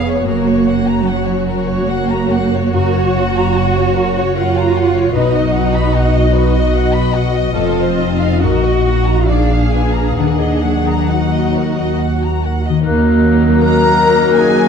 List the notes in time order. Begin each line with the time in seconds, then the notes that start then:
Already playing: F1 F2 B3 C#4 G#4 B4 C#5
0.08 C#5
0.24 F#1 F#2 A#3 F#4 A#4
0.47 C#5
0.64 A#3 F#5
0.87 A#5
1.02 F#3 C#4
1.07 F#5
1.25 C#5
1.44 F#4
1.48 A#4
1.67 C#5
1.84 A#3 A#4
1.89 F#5
2.09 A#5
2.29 F#4 F#5
2.54 C#5
2.72 F#2 F#4 A#4 C#5
2.96 C#5
3.16 A#3 F#5
3.37 A#5
3.57 C#4 F#5
3.77 C#5
3.96 F#4 A#4
4.16 C#5
4.35 F4 A#4 F#5
4.57 A#5
4.75 F#4 F#5
4.97 C#5
5.14 B1 B2 D#4 F#4 B4 D#5
5.35 D#5
5.54 B3 F#5
5.74 B5
5.96 D#4 F#5
6.15 D#5
6.35 F#4 B4
6.54 D#5
6.74 B4 F#5
6.94 B5
7.13 F#4 F#5
7.33 D#5
7.55 F1 F2 C4 F4 A4
7.78 C5
7.98 D#4 A4 D#5
8.20 F5
8.41 A#1 A#2 F#4 A#4
8.63 D#5
8.85 D#4 A#4 F#5
9.07 A#5
9.28 A#2 D4 G#4 D5 F5
9.49 F5
9.72 F4 B4 G#5
9.93 A#5
10.16 D#2 D#3 D4 A#4 F#5
10.39 D#5
10.64 F#3 F#5
10.86 A#5
11.09 D#4 F#4 F#5
11.34 D#5
11.56 A#4
11.78 D#5
12.00 F#4 F#5
12.23 A#5
12.45 A#4 F#5
12.65 D#5
12.69 D#3
12.74 A#3
12.78 F#4
12.83 D#2 F#2 F#3 A#3 D#4 F#4 A#4 F#6
12.87 F#3
13.06 A#3
13.26 A#3
13.45 A#3
13.62 A#3 A#4 A#5 F#6
13.86 A#3
14.02 A#3
14.22 A#3
14.39 A#3 G#4 G#5
14.59 A#3